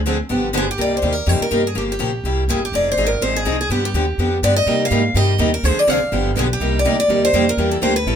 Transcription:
Already playing: upright bass D2
0.06 steel-string acoustic guitar D3 F3 C4 D4 G#4
0.29 upright bass G1, steel-string acoustic guitar D3 F3 B3 D4 G4
0.53 steel-string acoustic guitar D3 F3 B3 D4 G4
0.58 steel-string acoustic guitar G#4
0.71 steel-string acoustic guitar G4
0.78 upright bass C2, steel-string acoustic guitar C3 G3 A#3 D#4 G4 D5
0.97 steel-string acoustic guitar C5
1.02 upright bass D#2, steel-string acoustic guitar C3 G3 A#3 D#4 G4
1.12 steel-string acoustic guitar A#4
1.26 upright bass F2, steel-string acoustic guitar C3 G3 A#3 D#4 G4 C5
1.41 steel-string acoustic guitar A#4, muted upright bass stroke
1.51 upright bass G2, steel-string acoustic guitar C3 G3 A#3 D#4 G4
1.67 steel-string acoustic guitar G#4
1.75 upright bass G1, steel-string acoustic guitar C#3 F3 A#3 F4 G4
1.92 steel-string acoustic guitar G4
1.99 upright bass A#1, steel-string acoustic guitar C#3 F3 A#3 F4 G4
2.24 upright bass C2, steel-string acoustic guitar C3 G3 A#3 E4 G4
2.48 upright bass G1, steel-string acoustic guitar C3 G3 A#3 E4 G4 G#4
2.65 steel-string acoustic guitar G4
2.72 upright bass F1, steel-string acoustic guitar F3 C4 D#4 G#4 D5
2.92 steel-string acoustic guitar C5
2.97 upright bass G#1, steel-string acoustic guitar F3 C4 D#4 G#4
3.07 steel-string acoustic guitar A#4
3.21 upright bass G#1, steel-string acoustic guitar F3 C4 D#4 G#4 C5
3.36 steel-string acoustic guitar G#4
3.45 upright bass C2, steel-string acoustic guitar F3 C4 D#4 G#4
3.61 steel-string acoustic guitar G#4
3.69 upright bass G2, steel-string acoustic guitar D3 F3 B3 D4 G4
3.85 steel-string acoustic guitar G4
3.94 upright bass D#2, steel-string acoustic guitar D3 F3 B3 D4 G4
4.18 upright bass F2, steel-string acoustic guitar D3 F3 B3 D4 G4
4.43 upright bass G2, steel-string acoustic guitar D3 F3 B3 D4 G4 D5
4.56 steel-string acoustic guitar D#5
4.66 steel-string acoustic guitar C3 G3 A#3 D#4 G4, upright bass C3
4.85 steel-string acoustic guitar F5
4.91 upright bass G#2, steel-string acoustic guitar C3 G3 A#3 D#4 G4
5.14 upright bass G2, steel-string acoustic guitar C3 G3 A#3 D#4 G4 D#5
5.39 upright bass D#2, steel-string acoustic guitar C3 G3 A#3 D#4 G4
5.54 steel-string acoustic guitar A#4
5.63 upright bass D2, steel-string acoustic guitar D3 F3 C4 D4 G#4 C5
5.77 steel-string acoustic guitar D5, muted upright bass stroke
5.87 upright bass C2, steel-string acoustic guitar D3 F3 C4 D4 G#4 F5
6.01 muted upright bass stroke
6.12 upright bass G1, steel-string acoustic guitar D3 F3 B3 D4 G4
6.36 upright bass B1, steel-string acoustic guitar D3 F3 B3 D4 G4 G#4
6.53 steel-string acoustic guitar G4
6.60 upright bass C2, steel-string acoustic guitar C3 G3 A#3 D#4 G4
6.79 steel-string acoustic guitar D5
6.84 upright bass D2, steel-string acoustic guitar C3 G3 A#3 D#4 G4
7.00 steel-string acoustic guitar D5
7.09 upright bass D#2, steel-string acoustic guitar C3 G3 A#3 D#4 G4
7.25 steel-string acoustic guitar C5
7.33 upright bass F2, steel-string acoustic guitar C3 G3 A#3 D#4 G4
7.49 steel-string acoustic guitar A#4
7.57 upright bass E2, steel-string acoustic guitar E3 G3 A#3 D4 E4 G4 A#4
7.71 steel-string acoustic guitar A4
7.82 upright bass D2, steel-string acoustic guitar E3 G3 A#3 D4 E4 G4 A#4 C5
7.96 steel-string acoustic guitar B4
8.06 upright bass A1, steel-string acoustic guitar E3 G3 C#4 E4 A4

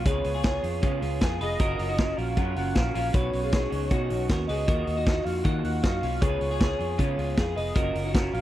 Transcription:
0.05 fingered electric bass C#2, clean electric guitar C#3 G#3 B3 F4 G#4 B4, soft synth lead C#5, kick, closed hi-hat
0.24 fingered electric bass C#2, clean electric guitar B3 F4 G#4, open hi-hat
0.34 clean electric guitar F4 G#4
0.43 clean electric guitar G#3 B3 F4 G#4, kick, snare, closed hi-hat
0.63 fingered electric bass F2, clean electric guitar B3 F4 G#4, open hi-hat
0.82 clean electric guitar C#3 G#3 B3 C#4 F4 G#4, fingered electric bass C#3, kick, closed hi-hat
1.01 fingered electric bass C#2, clean electric guitar B3 F4 G#4, open hi-hat
1.21 fingered electric bass F2, clean electric guitar G#3 B3 F4 G#4, kick, snare, closed hi-hat
1.40 fingered electric bass F1, clean electric guitar B3 F4 G#4 B4, soft synth lead D#5, open hi-hat
1.59 fingered electric bass F#1, clean electric guitar F#2 C#3 F#3 C#4 F4 F#4 A#4, kick, closed hi-hat
1.78 fingered electric bass F#1, clean electric guitar F#3 C#4 F4 A#4, open hi-hat
1.89 clean electric guitar D#4 F#4
1.98 clean electric guitar F#3 C#4 F4 F#4 A#4, kick, snare, closed hi-hat
2.17 fingered electric bass A#1, clean electric guitar F#3 C#4 F4 A#4, soft synth lead F5, open hi-hat
2.36 clean electric guitar F#2 C#3 F#3 C#4 F4 A#4, fingered electric bass F#2, soft synth lead F#5, kick, closed hi-hat
2.55 fingered electric bass F#1, clean electric guitar F#3 C#4 F4 A#4, soft synth lead F#5, open hi-hat
2.75 fingered electric bass A#1, clean electric guitar F#3 C#4 F4 F#4 A#4, soft synth lead F5, kick, snare, closed hi-hat
2.94 fingered electric bass A#1, clean electric guitar F#3 C#4 F4 A#4, open hi-hat
3.13 fingered electric bass B1, clean electric guitar B2 D#3 F#3 B3 C#4 F#4 B4, soft synth lead C#5, kick, closed hi-hat
3.32 fingered electric bass B1, clean electric guitar F#3 B3 C#4 F#4, open hi-hat
3.44 clean electric guitar F4 G#4
3.52 clean electric guitar F#3 B3 C#4 D#4 F#4 G#4, kick, snare, closed hi-hat
3.70 fingered electric bass C#2, clean electric guitar F#3 B3 C#4 F#4, open hi-hat
3.90 clean electric guitar B2 D#3 F#3 B3 C#4 D#4 F#4, fingered electric bass B2, kick, closed hi-hat
4.09 fingered electric bass B1, clean electric guitar F#3 B3 C#4 F#4, open hi-hat
4.28 fingered electric bass D#2, clean electric guitar F#3 B3 C#4 F#4 A#4, kick, snare, closed hi-hat
4.47 fingered electric bass C#2, clean electric guitar F#3 B3 C#4 F#4 G#4 B4, soft synth lead D#5, open hi-hat
4.67 fingered electric bass D#2, clean electric guitar D#3 F#3 A#3 F4 F#4 A#4, kick, closed hi-hat
4.86 fingered electric bass D#2, clean electric guitar A#3 F4 F#4, open hi-hat
4.97 clean electric guitar D#4 F#4
5.05 clean electric guitar F#3 A#3 D#4 F4 F#4, kick, snare, closed hi-hat
5.24 fingered electric bass F2, clean electric guitar A#3 F4 F#4, soft synth lead F5, open hi-hat
5.43 clean electric guitar D#3 F#3 A#3 D#4 F4 F#4, fingered electric bass D#3, soft synth lead F#5, kick, closed hi-hat
5.63 fingered electric bass D#2, clean electric guitar A#3 F4 F#4, soft synth lead F#5, open hi-hat
5.82 fingered electric bass F#2, clean electric guitar F#3 A#3 D#4 F4 F#4, soft synth lead F5, kick, snare, closed hi-hat
6.01 fingered electric bass B1, clean electric guitar A#3 C#4 F4 F#4, open hi-hat
6.21 fingered electric bass C#2, clean electric guitar C#3 G#3 B3 F4 G#4 B4, soft synth lead C#5, kick, closed hi-hat
6.41 fingered electric bass C#2, clean electric guitar B3 F4 G#4, open hi-hat
6.51 clean electric guitar F4 G#4
6.59 clean electric guitar G#3 B3 F4 G#4, kick, snare, closed hi-hat
6.79 fingered electric bass F2, clean electric guitar B3 F4 G#4, open hi-hat
6.98 clean electric guitar C#3 G#3 B3 C#4 F4 G#4, fingered electric bass C#3, kick, closed hi-hat
7.17 fingered electric bass C#2, clean electric guitar B3 F4 G#4, open hi-hat
7.36 fingered electric bass F2, clean electric guitar G#3 B3 F4 G#4, kick, snare, closed hi-hat
7.56 fingered electric bass F1, clean electric guitar B3 F4 G#4 B4, soft synth lead D#5, open hi-hat
7.74 fingered electric bass F#1, clean electric guitar F#2 C#3 F#3 C#4 F4 F#4 A#4, kick, closed hi-hat
7.94 fingered electric bass F#1, clean electric guitar F#3 C#4 F4 A#4, open hi-hat
8.04 clean electric guitar D#4 F#4
8.13 clean electric guitar F#3 C#4 F4 F#4 A#4, kick, snare, closed hi-hat
8.32 fingered electric bass A#1, clean electric guitar F#3 C#4 F4 A#4, soft synth lead F5, open hi-hat

